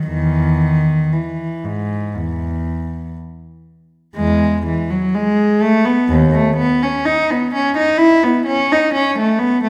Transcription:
cello
0.07 E2 D#3
1.12 E3
1.64 G#2
2.15 E2
4.15 E2 G#3
4.66 E3
4.90 F#3
5.14 G#3
5.62 A3
5.85 B3
6.08 D#2
6.33 A3
6.57 B3
6.82 C#4
7.05 D#4
7.30 B3
7.54 C#4
7.77 D#4
7.97 E4
8.23 B3
8.46 C#4
8.72 D#4
8.94 C#4
9.18 A3
9.39 B3
9.63 A3

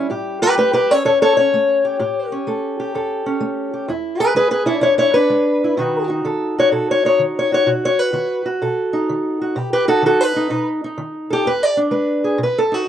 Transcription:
steel-string acoustic guitar
Already playing: G3
0.10 A2 G4
0.42 G4 B4
0.58 A3 G4 B4
0.73 G4 B4
0.91 C#4 A4 C#5
1.05 E2 A4 C#5
1.22 A4 C#5
1.37 C#4 C#5
1.54 A3
1.85 G4
1.99 A2 G4
2.32 C#4
2.47 A3 A4
2.80 G4
2.95 E2 A4
3.26 C#4
3.40 A3
3.74 G4
3.88 E2 E4
4.20 G#4 B4
4.35 G#3 G#4 B4
4.51 G#4 B4
4.66 D4 E4 C#5
4.81 E2 E4 C#5
4.98 E4 C#5
5.14 D4 B4
5.30 G#3
5.64 E4
5.77 B2 D#3 D#4 F#4
6.10 D#4
6.25 D#3 A4
6.58 F#4 C#5
6.72 B2 A4
6.91 C#5
7.05 D#4 C#5
7.19 D#3
7.39 C#5
7.52 F#4 C#5
7.66 B2 F#4
7.85 C#5
7.99 B4
8.13 D#3 F#4
8.46 F#4
8.62 B2 A4
8.93 D#4
9.09 D#3
9.41 F#4
9.56 B2 G4 B4
9.73 G4 B4
9.88 D#4 F#4 A4
10.02 D#3 F#4
10.06 A4
10.21 B4
10.36 D#4
10.50 B2 D#4
10.84 D#4
10.98 D#3
11.30 G4 A4
11.45 E2 B4
11.63 D5
11.77 D4
11.91 G#3 B4
12.24 G#4
12.38 B2
12.43 B4
12.58 A4
12.72 D#4 F#4

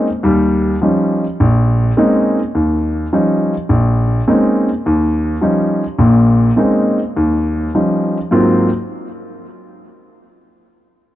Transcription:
grand piano
0.23 D#2 G3
0.82 F3 G3 C#4 D#4
1.40 A#1
1.97 G#3 A#3 C4 C#4 D#4
2.55 D#2
3.13 F3 G3 C#4 D#4
3.69 A#1
4.28 G#3 A#3 C4 C#4 D#4
4.86 D#2
5.41 F3 G3 C#4 D#4
5.98 A#1 A#2
6.56 G#3 A#3 C4 C#4 D#4
7.17 D#2
7.75 F3 G3 C#4 D#4
8.31 G#2 F#3 A#3 C4 F4

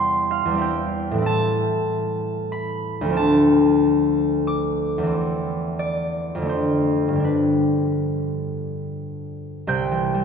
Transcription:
harp
Already playing: E2 G3 C4 E4 E5 G5
0.00 C6
0.31 F5
0.45 E2
0.51 G3 C4
0.58 E4 G5
1.11 A2 E3
1.18 C4 E4
1.26 A5
2.52 B5
3.01 D2
3.06 F3 C4
3.12 D4
3.17 A5
4.47 D6
4.98 E2
5.03 E3 C4
5.79 D5
6.35 F2 D3
6.42 A3 D4
6.49 C5
7.08 G2
7.13 D3 G3
7.19 D4
7.24 B4
9.67 C2 C3 G5 G6
9.92 E3
10.14 G3

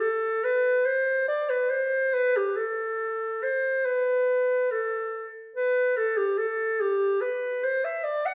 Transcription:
clarinet
0.00 A4
0.44 B4
0.85 C5
1.28 D5
1.50 B4
1.70 C5
2.14 B4
2.37 G4
2.56 A4
3.43 C5
3.85 B4
4.71 A4
5.56 B4
5.97 A4
6.17 G4
6.38 A4
6.81 G4
7.21 B4
7.64 C5
7.85 E5
8.04 D5
8.26 F#5

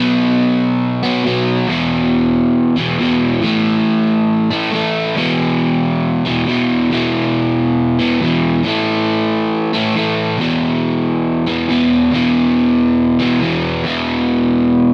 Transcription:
overdriven electric guitar
Already playing: B2 F#3 B3
1.03 B2 F#3 B3
1.24 B2 F#3 B3
1.67 E2 B2 E3
2.77 E2 B2 E3
3.00 E2 B2 E3
3.42 A2 E3 A3
4.51 A2 E3 A3
4.72 A2 E3 A3
5.16 E2 B2 E3
6.25 E2 B2 E3
6.47 E2 B2 E3
6.91 E2 B2 E3
7.99 E2 B2 E3
8.21 E2 B2 E3
8.64 A2 E3 A3
9.73 A2 E3 A3
9.95 A2 E3 A3
10.38 E2 B2 E3
11.47 E2 B2 E3
11.69 E2 B2 E3
12.12 E2 B2 E3
13.19 E2 B2 E3
13.41 E2 B2 E3
13.84 E2 B2 E3

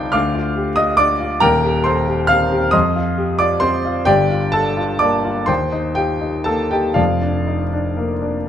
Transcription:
grand piano
Already playing: C2 D#4 F4 G4 C5 D5 G5 A5 C6 D6 G6
0.12 D2 F5 D6 F6
0.35 F4
0.56 G4
0.76 F4 D#5 D#6
0.97 D4 D5 D6
1.20 F4
1.40 D#1 D#2 A#4 G5 A#5
1.64 G4
1.84 A4 C5 C6
2.07 G4
2.27 C4 F5 F6
2.52 G4
2.71 F2 D#5 C6 D#6
2.96 F4
3.17 G4
3.39 F4 D5 D6
3.60 C4 C5 C6
3.85 F4
4.05 G1 G2 G4 D5 G5
4.31 F4
4.52 G4 A4 A5
4.77 F4
4.99 A#3 D5 D6
5.25 F4
5.46 D#2 C5 G5 C6
5.72 D#4
5.95 F4 G4 G5
6.21 D#4
6.44 A#3 A4 A5
6.71 D#4 G4 G5
6.94 F1 F2 F4 D5 F5
7.22 D4
7.47 D#4
7.73 D4
7.97 A#3
8.22 D4

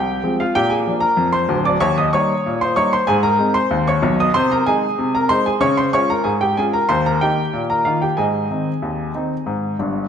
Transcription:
upright piano
Already playing: C2 G4 G5
0.23 F3 G#3 C4
0.40 F4 F5
0.55 A#2 G4 G5
0.70 G#4 G#5
0.87 F3 A#3 D4
1.00 A#4 A#5
1.17 F2
1.33 C5 C6
1.49 D1 D2
1.65 D5 D6
1.80 D#2 C#5 C#6
1.98 D#5 D#6
2.13 G3 A#3 D#4 C#5 C#6
2.46 A#2
2.61 C5 C6
2.76 G3 A#3 D#4 C#5 C#6
2.93 C5 C6
3.07 G#2 G#4 G#5
3.23 A#4 A#5
3.39 G#3 C4 D#4
3.54 C5 C6
3.71 D#2
3.88 C#5 C#6
4.02 B1 B2
4.20 D#5 D#6
4.34 C3 C5 C6
4.51 A#4 A#5
4.66 G#3 D#4 G#4 G#5
4.98 C3
5.15 A#4 A#5
5.29 G#3 D#4 C5 C6
5.46 G#4 G#5
5.60 C#3 C#5 C#6
5.77 C5 C6
5.93 G#3 C#4 F4 C#5 C#6
6.10 A#4 A#5
6.24 G#2 G#4 G#5
6.41 G4 G5
6.57 G#3 C#4 F4 G#4 G#5
6.73 A#4 A#5
6.89 D#2 C5 C6
7.06 A#4 A#5
7.21 D#3 A#3 D#4 G4 G5
7.53 A#2
7.70 A#4 A#5
7.85 D#3 A#3 D#4 F4 F5
8.02 G4 G5
8.17 G#2 G#4 D#5 G#5
8.51 D#3 C4 D#4
8.82 D#2
9.15 D#3 C4 D#4
9.46 G#2
9.79 G1 G2

